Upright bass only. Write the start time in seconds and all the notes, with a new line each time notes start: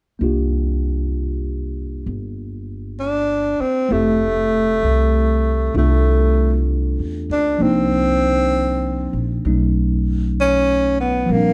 0.21 C2
2.06 G1
3.60 muted upright bass stroke
3.91 F1
4.83 C2
5.74 C2
6.99 E2
7.30 C#2
7.60 C2
9.13 A#1
9.45 B1
11.29 A#1